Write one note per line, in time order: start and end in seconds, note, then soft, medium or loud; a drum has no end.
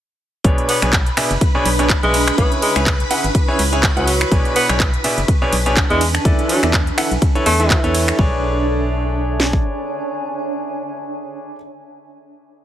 0.44 0.53 B1 loud
0.44 0.79 B2 medium
0.44 0.79 D4 medium
0.44 2.38 D4 medium
0.44 0.79 G#4 medium
0.44 0.79 B4 medium
0.44 8.20 B4 medium
0.44 0.79 C#5 medium
0.44 8.20 B5 medium
0.44 kick loud
0.44 closed hi-hat medium
0.58 closed hi-hat soft
0.66 0.82 B3 medium
0.66 6.89 C#6 medium
0.66 open hi-hat loud
0.66 ride medium
0.82 1.10 B1 medium
0.82 0.93 B2 medium
0.82 0.93 D4 medium
0.82 0.93 G#4 medium
0.82 0.93 B4 medium
0.82 0.93 C#5 medium
0.82 finger snap medium
0.82 closed hi-hat medium
0.93 kick loud
0.93 clap loud
0.93 closed hi-hat medium
1.06 closed hi-hat soft
1.17 1.31 B2 medium
1.17 1.31 D4 medium
1.17 1.31 G#4 medium
1.17 1.31 B4 medium
1.17 1.31 E5 medium
1.17 3.16 G#5 medium
1.17 finger snap medium
1.17 open hi-hat loud
1.17 ride medium
1.31 1.37 F#1 medium
1.31 closed hi-hat medium
1.41 kick loud
1.41 closed hi-hat medium
1.55 1.66 B2 medium
1.55 1.66 D4 medium
1.55 1.66 G#4 medium
1.55 1.66 B4 medium
1.55 1.66 C#5 loud
1.65 1.95 B1 loud
1.65 open hi-hat loud
1.65 ride medium
1.79 1.90 B2 medium
1.79 1.90 D4 medium
1.79 1.90 G#4 medium
1.79 1.90 B4 medium
1.79 1.90 C#5 medium
1.79 closed hi-hat medium
1.90 kick loud
1.90 clap loud
1.90 closed hi-hat medium
2.03 2.31 B1 medium
2.03 2.14 B2 medium
2.03 2.36 G#3 medium
2.03 2.14 D4 medium
2.03 2.14 G#4 medium
2.03 2.14 B4 medium
2.03 2.14 E5 medium
2.03 closed hi-hat soft
2.14 open hi-hat loud
2.14 ride medium
2.28 finger snap medium
2.28 closed hi-hat medium
2.38 2.46 C#2 loud
2.38 2.73 C#3 medium
2.38 2.51 B3 medium
2.38 5.00 E4 medium
2.38 2.73 E4 medium
2.38 2.73 G#4 medium
2.38 2.73 B4 medium
2.38 2.73 C#5 medium
2.38 kick loud
2.38 closed hi-hat medium
2.52 closed hi-hat soft
2.62 2.75 G#3 medium
2.62 open hi-hat loud
2.62 ride medium
2.68 5.00 B5 medium
2.76 3.04 C#2 medium
2.76 2.87 C#3 medium
2.76 2.87 E4 medium
2.76 2.87 G#4 medium
2.76 2.87 B4 medium
2.76 2.87 C#5 medium
2.76 finger snap medium
2.76 closed hi-hat medium
2.86 kick loud
2.86 clap loud
2.86 closed hi-hat medium
3.00 closed hi-hat soft
3.11 3.25 C#3 medium
3.11 3.25 E4 medium
3.11 3.25 G#4 medium
3.11 3.25 B4 medium
3.11 3.25 F#5 medium
3.11 open hi-hat loud
3.11 ride medium
3.24 3.31 G#1 medium
3.24 closed hi-hat medium
3.35 kick loud
3.35 closed hi-hat medium
3.48 3.60 C#3 loud
3.48 3.60 E4 medium
3.48 3.60 G#4 medium
3.48 3.60 B4 medium
3.48 3.60 C#5 loud
3.59 3.88 C#2 loud
3.59 open hi-hat loud
3.59 ride medium
3.73 3.84 C#3 medium
3.73 3.84 E4 medium
3.73 3.84 G#4 medium
3.73 3.84 B4 medium
3.73 3.84 C#5 loud
3.73 closed hi-hat medium
3.83 kick loud
3.83 clap loud
3.83 closed hi-hat medium
3.97 4.25 C#2 medium
3.97 4.08 C#3 medium
3.97 4.32 F#3 medium
3.97 4.08 E4 medium
3.97 4.08 G#4 medium
3.97 4.08 B4 medium
3.97 4.08 F#5 medium
3.97 closed hi-hat soft
4.07 open hi-hat loud
4.07 ride medium
4.21 finger snap medium
4.21 closed hi-hat medium
4.32 4.40 B1 loud
4.32 4.66 B2 medium
4.32 4.66 D4 medium
4.32 8.17 D4 medium
4.32 4.66 G#4 medium
4.32 4.66 B4 medium
4.32 4.66 C#5 medium
4.32 kick loud
4.32 closed hi-hat medium
4.45 closed hi-hat soft
4.56 4.69 B3 loud
4.56 open hi-hat loud
4.56 ride medium
4.69 4.98 B1 medium
4.69 4.80 B2 medium
4.69 4.80 D4 medium
4.69 4.80 G#4 medium
4.69 4.80 B4 medium
4.69 4.80 C#5 medium
4.69 6.89 G#5 medium
4.69 finger snap medium
4.69 closed hi-hat medium
4.80 kick loud
4.80 clap loud
4.80 closed hi-hat medium
4.94 closed hi-hat soft
5.04 5.18 B2 medium
5.04 5.18 D4 medium
5.04 5.18 G#4 medium
5.04 5.18 B4 medium
5.04 5.18 E5 medium
5.04 open hi-hat loud
5.04 ride medium
5.18 5.24 F#1 medium
5.18 closed hi-hat medium
5.28 kick loud
5.28 closed hi-hat medium
5.42 5.53 B2 loud
5.42 5.53 D4 medium
5.42 5.53 G#4 medium
5.42 5.53 B4 medium
5.42 5.53 C#5 loud
5.53 5.82 B1 loud
5.53 open hi-hat loud
5.53 ride medium
5.66 5.77 B2 medium
5.66 5.77 D4 medium
5.66 5.77 G#4 medium
5.66 5.77 B4 medium
5.66 5.77 C#5 loud
5.66 closed hi-hat medium
5.77 kick loud
5.77 clap loud
5.77 closed hi-hat medium
5.90 6.18 E2 loud
5.90 6.00 E3 medium
5.90 6.06 G#3 loud
5.90 6.00 D4 medium
5.90 6.00 G#4 medium
5.90 6.00 B4 medium
5.90 6.00 E5 medium
5.90 closed hi-hat soft
6.01 open hi-hat loud
6.01 ride medium
6.15 finger snap medium
6.15 closed hi-hat medium
6.22 6.33 E2 medium
6.22 6.60 E3 medium
6.22 6.60 E4 medium
6.22 8.19 A4 medium
6.22 6.60 A4 medium
6.22 6.60 B4 medium
6.22 6.60 D5 medium
6.22 kick loud
6.22 closed hi-hat medium
6.39 closed hi-hat soft
6.49 6.62 F#3 loud
6.49 open hi-hat loud
6.49 ride medium
6.63 6.91 E2 medium
6.63 6.74 E3 medium
6.63 6.74 E4 medium
6.63 6.74 A4 medium
6.63 6.74 B4 medium
6.63 6.74 D5 medium
6.63 finger snap medium
6.63 closed hi-hat medium
6.74 kick loud
6.74 clap loud
6.74 closed hi-hat medium
6.87 closed hi-hat soft
6.92 8.19 E5 medium
6.98 7.12 E3 medium
6.98 7.12 E4 medium
6.98 7.12 A4 medium
6.98 7.12 B4 medium
6.98 7.12 F#5 medium
6.98 finger snap medium
6.98 open hi-hat loud
6.98 ride medium
7.11 7.18 B1 medium
7.11 closed hi-hat medium
7.22 kick loud
7.22 closed hi-hat medium
7.35 7.47 E3 loud
7.35 7.47 E4 medium
7.35 7.47 A4 medium
7.35 7.47 B4 medium
7.35 7.47 C#5 loud
7.35 closed hi-hat soft
7.46 7.75 E2 loud
7.46 7.84 A3 loud
7.46 open hi-hat loud
7.46 ride medium
7.60 7.81 E3 medium
7.60 7.81 E4 medium
7.60 7.81 A4 medium
7.60 7.81 B4 medium
7.60 7.81 E5 loud
7.60 closed hi-hat medium
7.70 kick loud
7.70 clap loud
7.70 closed hi-hat medium
7.84 8.12 E2 medium
7.84 8.16 E3 loud
7.84 8.16 E4 medium
7.84 8.16 A4 loud
7.84 8.16 B4 medium
7.84 8.16 C#5 loud
7.84 closed hi-hat soft
7.95 open hi-hat loud
7.95 ride medium
8.08 finger snap medium
8.08 closed hi-hat medium
8.19 9.60 B1 loud
8.19 11.55 D4 medium
8.19 11.55 G#4 medium
8.19 11.55 B4 medium
8.19 11.55 C#5 loud
8.19 kick loud
8.27 11.64 C#5 medium
8.34 11.71 G#5 medium
9.40 snare medium
9.53 kick medium